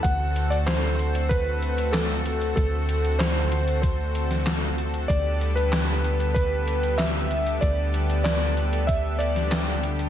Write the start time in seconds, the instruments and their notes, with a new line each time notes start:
Already playing: analog synth pad A4
0.03 analog synth bass D2, analog synth pad D3 A3 C4 F#4, electric grand piano F#5, kick, closed hi-hat
0.36 closed hi-hat
0.50 electric grand piano D5, closed hi-hat
0.66 electric grand piano C5, snare, clap, closed hi-hat
0.99 closed hi-hat
1.15 closed hi-hat
1.29 electric grand piano B4, kick, closed hi-hat
1.62 closed hi-hat
1.78 closed hi-hat
1.93 electric grand piano A4, snare, clap, closed hi-hat
2.26 closed hi-hat
2.41 closed hi-hat
2.56 analog synth bass D2, electric grand piano A4, analog synth pad A4, kick, closed hi-hat
2.89 closed hi-hat
3.05 closed hi-hat
3.19 electric grand piano C5, snare, clap, closed hi-hat
3.52 closed hi-hat
3.68 closed hi-hat
3.82 electric grand piano C5, kick, closed hi-hat
4.15 closed hi-hat
4.31 snare, closed hi-hat
4.47 snare, clap, closed hi-hat
4.78 closed hi-hat
4.94 closed hi-hat
5.08 analog synth bass D2, analog synth pad G3 B3 G4, electric grand piano D5, kick, closed hi-hat
5.41 closed hi-hat
5.56 electric grand piano B4, closed hi-hat
5.73 snare, clap, closed hi-hat
6.04 closed hi-hat
6.20 closed hi-hat
6.34 electric grand piano B4, kick, closed hi-hat
6.68 closed hi-hat
6.83 closed hi-hat
6.98 electric grand piano E5, snare, clap, closed hi-hat
7.31 closed hi-hat
7.47 closed hi-hat
7.61 analog synth bass D2, analog synth pad A4, electric grand piano D5, kick, closed hi-hat
7.94 closed hi-hat
8.10 closed hi-hat
8.24 electric grand piano D5, snare, clap, closed hi-hat
8.57 closed hi-hat
8.73 closed hi-hat
8.87 electric grand piano E5, kick, closed hi-hat
9.19 electric grand piano D5, closed hi-hat
9.36 snare, closed hi-hat
9.52 snare, clap, closed hi-hat
9.83 closed hi-hat
9.99 closed hi-hat